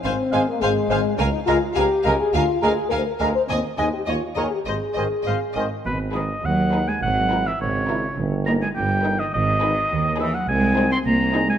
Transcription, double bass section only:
X:1
M:2/4
L:1/8
Q:1/4=104
K:Ab
V:1 name="Double bass section" clef=bass
A,,, A,,, A,,, A,,, | D,, D,, D,, D,, | =D,, D,, D,, D,, | E,, E,, E,, E,, |
A,,, A,,, A,,, A,,, | [K:G#m] G,,,2 D,,2 | G,,,2 G,,,2 | =G,,,2 G,,,2 |
G,,,2 D,,2 | [K:Ab] C,,2 C,,2 |]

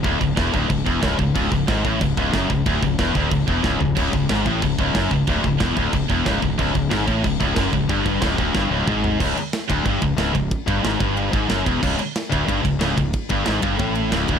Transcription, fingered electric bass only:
X:1
M:4/4
L:1/8
Q:1/4=183
K:C#phr
V:1 name="Fingered electric bass" clef=bass
D,,, C,,, E,,, D,,, C,,, E,,, C,,, C,,, | C,,, C,,, G,,, A,,, C,,, C,,, F,,, C,,, | D,,, C,,, E,,, D,,, C,,, E,,, C,,, C,,, | C,,, C,,, G,,, A,,, C,,, C,,, F,,, C,,, |
D,,, C,,, E,,, D,,, C,,, E,,, C,,, C,,, | C,,, C,,, G,,, A,,, C,,, C,,, F,,, C,,, | =G,,,2 C,,, D,,, G,,, C,,, ^G,,,2 | C,,, z2 D,,, =G,,, C,,, C,,, C,,, |
z =G,,, ^G,,, =G,,,2 ^G,,, F,,, E,,, | C,,, z2 D,,, =G,,, C,,, C,,, C,,, | z =G,,, ^G,,, =G,,, A,,,2 C,,, D,,, |]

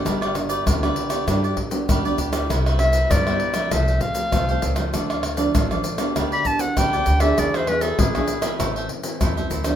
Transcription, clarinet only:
X:1
M:4/4
L:1/16
Q:1/4=98
K:Gmix
V:1 name="Clarinet"
z16 | z2 e2 d4 e2 f6 | z8 z b a ^f g3 e | d c B A ^G4 z8 |]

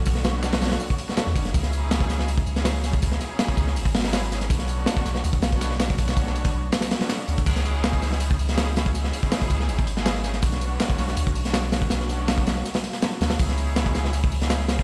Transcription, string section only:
X:1
M:4/4
L:1/16
Q:1/4=162
K:C#phr
V:1 name="String section"
[A,B,CDF]8- [A,B,CDF]2 z [A,B,CDF]3 [A,B,CDF]2 | [B,C^DEG]8- [B,CDEG]2 z [B,CDEG]3 [B,CDEG]2 | [B,C^DEG]8- [B,CDEG]2 z [B,CDEG]3 [B,CDEG]2 | [A,B,CDF]8- [A,B,CDF]2 z [A,B,CDF]3 [A,B,CDF]2 |
[A,B,CDF]8- [A,B,CDF]2 z [A,B,CDF]3 [A,B,CDF]2 | [B,C^DEG]8- [B,CDEG]2 z [B,CDEG]3 [B,CDEG]2 | [B,C^DEG]8- [B,CDEG]2 z [B,CDEG]3 [B,CDEG]2 | [A,B,CDF]8- [A,B,CDF]2 z [A,B,CDF]3 [A,B,CDF]2 |
[A,B,CDF]8- [A,B,CDF]2 z2 [A,B,CDF]2 [A,B,CDF] z | [B,C^DEG]8- [B,CDEG]2 z [B,CDEG]3 [B,CDEG]2 |]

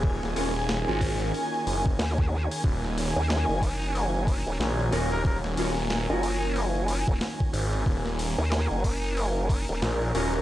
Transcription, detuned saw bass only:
X:1
M:4/4
L:1/16
Q:"Swing 16ths" 1/4=92
K:Ebm
V:1 name="Detuned saw bass" clef=bass
E,,, E,,, E,,,3 A,,,3 z2 G,,,2 z4 | E,,,3 z8 z B,,,2 E,,,2- | E,,, E,,, E,,,3 z8 z A,,,2 | E,,,3 z8 z B,,,2 E,,,2 |]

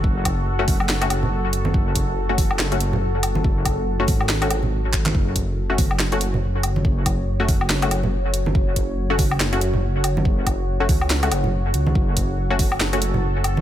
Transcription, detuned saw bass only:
X:1
M:4/4
L:1/8
Q:"Swing 16ths" 1/4=141
K:F#m
V:1 name="Detuned saw bass" clef=bass
F,,,3 F,,,4- F,,, | F,,,4 F,,,4 | F,,,3 G,,,4- G,,, | F,,,4 F,,,4 |
F,,,3 F,,,4- F,,, | F,,,4 F,,,4 | F,,,3 C,,2 F,,,2 C,, | F,,,4 F,,,4 |]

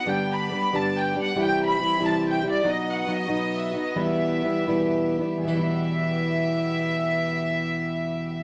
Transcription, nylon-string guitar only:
X:1
M:6/8
L:1/8
Q:3/8=88
K:Em
V:1 name="Nylon-string guitar"
[G,,D,G,B,DG]2 [G,B,DG] [G,,D,G,B,DG]2 [G,B,DG] | [C,E,G,EG]2 [E,G,EG] [C,E,G,EG]2 [G,EG] | [B,,F,B,^DF]2 [F,B,DF] [B,,F,B,DF]2 [B,DF] | [E,,B,,E,G,B,E]2 [E,G,B,E] [E,,B,,E,G,B,E]2 [E,G,B,E] |
[E,,B,,E,G,B,E]6- | [E,,B,,E,G,B,E]6 |]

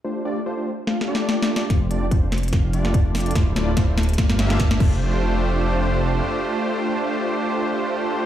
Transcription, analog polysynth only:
X:1
M:4/4
L:1/16
Q:"Swing 16ths" 1/4=145
K:F
V:1 name="Analog polysynth"
[A,DFGc]2 [A,DFGd] z [A,DFGc] [A,DFGc] z2 [A,DFGf]2 [A,DFGd]6 | [A,DFGc]2 [A,DFGd] z [A,DFGc] [A,DFGc] z2 [A,DFGf]2 [A,DFGd]6 | [A,EFc]2 [A,DEFd] z [A,DFc] [A,DEFc] z2 [B,DFGf]2 [B,DFGe]4 [A,DFGc]2- | [A,DFGc]16- |
[A,DFGc]16 |]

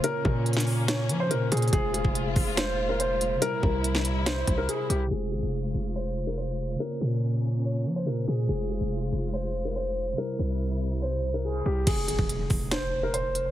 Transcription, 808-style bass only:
X:1
M:4/4
L:1/16
Q:1/4=142
K:Fm
V:1 name="808-style bass" clef=bass
z2 B,,8 F,2 B,,2 B,,2 | F,,,3 F,,,3 F,,,8- F,,,2 | z2 C,,8 C,,2 z2 C,,2 | F,,,2 A,,, F,,,3 F,,,8- F,,,2 |
z2 B,,8 F,2 B,,2 B,,2 | F,,,3 F,,,3 F,,,8- F,,,2 | z2 C,,12 C,,2 | F,,,2 A,,, F,,,3 F,,,8- F,,,2 |]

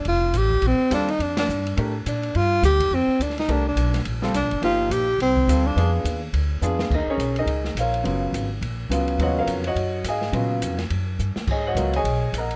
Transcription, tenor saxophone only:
X:1
M:4/4
L:1/8
Q:"Swing" 1/4=210
K:Cdor
V:1 name="Tenor saxophone"
F2 G2 C2 D E | D D3 z2 D2 | F2 G2 C2 D E | D D3 z2 D2 |
F2 G2 C3 D- | D z6 z | [K:Ebm] z8 | z8 |
z8 | z8 | z8 |]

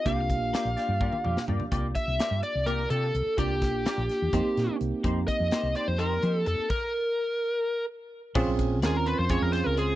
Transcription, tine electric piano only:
X:1
M:7/8
L:1/8
Q:1/4=126
K:Fm
V:1 name="Tine electric piano"
[B,=DFG]6- [B,DFG]- | [B,=DFG]6- [B,DFG] | [B,=DFG]4 [B,CEG]3- | [B,CEG]6- [B,CEG] |
z6 z | [K:Bbm] [CDFA]2 [CDFB]2 [CDFA]3 |]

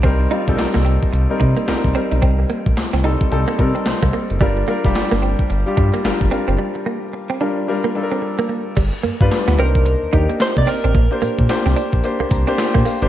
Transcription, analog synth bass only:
X:1
M:4/4
L:1/16
Q:"Swing 16ths" 1/4=110
K:Gphr
V:1 name="Analog synth bass" clef=bass
C,,2 z B,,, C,, C,,2 z C,, z C, z C,, C,, z =B,,, | C,,2 z B,,, C,, C,,2 z C,, z C, z C,, C,, z ^F,,, | G,,,2 z F,,, G,,, G,,,2 z G,,, z G,, z G,,, G,,, z ^F,,, | z16 |
G,,, z G,, G,, z D,, C,,3 E,, E,, z2 C, z =A,,, | B,,, z B,, B,, z C,, z B,,, z C,, C,, z2 B,, z ^F,,, |]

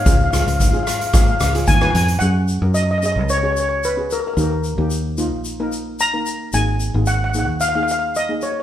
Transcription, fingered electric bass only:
X:1
M:4/4
L:1/16
Q:1/4=111
K:F#
V:1 name="Fingered electric bass" clef=bass
C,,2 C,, C,,2 z4 z C,,2 D,,2 E,,2 | F,,3 F,,4 C,,8 z | D,,3 D,,4 A,,,8 z | G,,,3 G,,,4 D,,8 z |]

